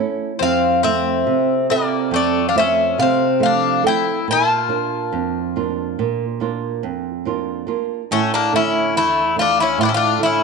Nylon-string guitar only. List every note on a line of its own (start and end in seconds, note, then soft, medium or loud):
0.00 0.31 A3 soft
0.00 0.32 C#4 soft
0.00 0.32 E4 medium
0.41 1.24 F2 medium
0.84 1.52 A3 soft
0.84 1.53 C4 soft
0.84 1.53 F4 soft
1.27 2.10 C3 medium
1.70 2.38 C4 soft
1.70 2.39 F4 medium
1.70 2.39 A4 medium
2.11 2.95 F2 medium
2.55 3.24 A3 soft
2.55 3.25 F4 medium
2.55 3.25 C5 soft
2.98 3.82 C3 medium
3.40 4.10 F3 medium
3.40 3.82 A3 soft
3.40 3.83 C4 soft
3.83 4.18 A3 soft
3.83 4.18 C4 soft
3.83 4.18 A4 medium
4.28 5.11 A#2 medium
4.69 5.38 A#3 soft
4.69 5.38 D4 soft
4.69 5.38 F4 medium
5.12 5.95 F2 medium
5.56 6.24 A#3 soft
5.56 6.24 D4 soft
5.56 6.24 F4 medium
5.99 6.81 A#2 medium
6.40 7.08 A#3 soft
6.40 7.09 D4 soft
6.40 7.09 F4 medium
6.83 7.65 F2 medium
7.25 7.66 A#3 soft
7.25 7.66 D4 soft
7.25 7.67 F4 medium
7.67 8.01 A#3 soft
7.67 8.01 D4 soft
7.67 8.02 F4 soft
8.11 8.92 A2 medium
8.53 9.20 D3 soft
8.53 9.20 A3 soft
8.53 9.20 E4 soft
8.95 9.76 E2 medium
9.36 10.03 A3 soft
9.36 10.03 D4 soft
9.36 10.04 E4 medium
9.78 10.43 A2 medium
10.19 10.43 D3 soft
10.19 10.43 A3 soft
10.19 10.43 E4 medium